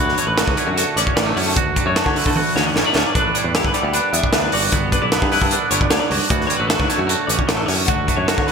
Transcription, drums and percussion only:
0.09 snare soft
0.18 closed hi-hat medium
0.38 snare loud
0.38 closed hi-hat medium
0.48 kick medium
0.57 closed hi-hat medium
0.78 closed hi-hat medium
0.97 closed hi-hat medium
1.07 kick medium
1.17 snare loud
1.17 closed hi-hat medium
1.37 open hi-hat medium
1.56 kick loud
1.56 closed hi-hat medium
1.76 kick medium
1.76 closed hi-hat medium
1.96 snare loud
1.96 closed hi-hat medium
2.06 kick medium
2.16 open hi-hat medium
2.26 kick medium
2.36 high tom medium
2.56 snare medium
2.76 snare medium
2.96 snare medium
3.15 kick loud
3.15 closed hi-hat medium
3.35 closed hi-hat medium
3.55 snare loud
3.55 closed hi-hat medium
3.65 kick medium
3.74 closed hi-hat medium
3.94 closed hi-hat medium
4.14 closed hi-hat medium
4.24 kick medium
4.33 snare loud
4.33 closed hi-hat medium
4.52 open hi-hat medium
4.72 kick loud
4.72 closed hi-hat medium
4.92 kick medium
4.92 closed hi-hat medium
5.12 snare loud
5.12 closed hi-hat medium
5.22 kick medium
5.32 snare soft
5.32 open hi-hat medium
5.42 kick medium
5.51 closed hi-hat medium
5.71 closed hi-hat medium
5.81 kick medium
5.91 snare loud
5.91 closed hi-hat medium
6.11 open hi-hat medium
6.30 kick loud
6.30 closed hi-hat loud
6.41 snare soft
6.50 closed hi-hat medium
6.70 snare loud
6.70 closed hi-hat medium
6.80 kick medium
6.90 snare soft
6.90 closed hi-hat medium
7.09 closed hi-hat medium
7.29 closed hi-hat medium
7.39 kick medium
7.49 snare loud
7.49 closed hi-hat medium
7.68 open hi-hat medium
7.88 kick loud
7.88 closed hi-hat medium
8.08 kick medium
8.08 closed hi-hat medium
8.28 snare loud
8.28 closed hi-hat medium
8.38 kick medium
8.48 open hi-hat medium

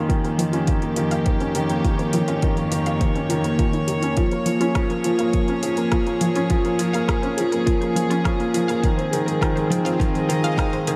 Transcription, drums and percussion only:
0.10 kick loud
0.10 closed hi-hat soft
0.25 closed hi-hat soft
0.39 closed hi-hat medium
0.53 closed hi-hat soft
0.67 kick loud
0.67 closed hi-hat soft
0.82 closed hi-hat soft
0.96 closed hi-hat medium
1.11 closed hi-hat soft
1.26 kick loud
1.26 closed hi-hat soft
1.40 closed hi-hat soft
1.55 closed hi-hat medium
1.70 closed hi-hat soft
1.85 kick loud
1.85 closed hi-hat soft
1.99 closed hi-hat soft
2.13 closed hi-hat medium
2.28 closed hi-hat soft
2.42 kick loud
2.42 closed hi-hat soft
2.57 closed hi-hat soft
2.72 closed hi-hat medium
2.86 closed hi-hat soft
3.01 kick loud
3.01 closed hi-hat soft
3.16 closed hi-hat soft
3.30 closed hi-hat medium
3.44 closed hi-hat soft
3.59 kick loud
3.59 closed hi-hat soft
3.73 closed hi-hat soft
3.88 closed hi-hat medium
4.03 closed hi-hat soft
4.17 kick loud
4.17 closed hi-hat soft
4.31 closed hi-hat soft
4.46 closed hi-hat medium
4.61 closed hi-hat soft
4.75 kick loud
4.75 cross-stick medium
4.75 closed hi-hat soft
4.90 closed hi-hat soft
5.04 closed hi-hat medium
5.19 closed hi-hat soft
5.33 kick medium
5.33 closed hi-hat soft
5.48 closed hi-hat soft
5.63 closed hi-hat medium
5.77 closed hi-hat soft
5.92 kick loud
5.92 cross-stick medium
5.92 closed hi-hat soft
6.07 closed hi-hat soft
6.21 closed hi-hat medium
6.35 closed hi-hat soft
6.50 kick medium
6.50 closed hi-hat soft
6.65 closed hi-hat soft
6.79 closed hi-hat medium
6.94 closed hi-hat soft
7.09 kick loud
7.09 cross-stick medium
7.09 closed hi-hat soft
7.23 closed hi-hat soft
7.38 closed hi-hat medium
7.52 closed hi-hat soft
7.67 kick medium
7.67 closed hi-hat soft
7.82 closed hi-hat soft
7.96 closed hi-hat medium
8.11 closed hi-hat soft
8.25 kick loud
8.25 cross-stick medium
8.25 closed hi-hat soft
8.40 closed hi-hat soft
8.54 closed hi-hat medium
8.69 closed hi-hat soft
8.84 kick loud
8.84 closed hi-hat soft
8.99 closed hi-hat soft
9.13 closed hi-hat medium
9.28 closed hi-hat soft
9.42 kick loud
9.42 cross-stick medium
9.42 closed hi-hat soft
9.57 closed hi-hat soft
9.72 closed hi-hat medium
9.86 closed hi-hat soft
10.00 kick medium
10.00 closed hi-hat soft
10.15 closed hi-hat soft
10.30 closed hi-hat medium
10.44 closed hi-hat soft
10.58 kick medium
10.58 cross-stick medium
10.58 closed hi-hat soft
10.73 closed hi-hat soft
10.87 closed hi-hat medium

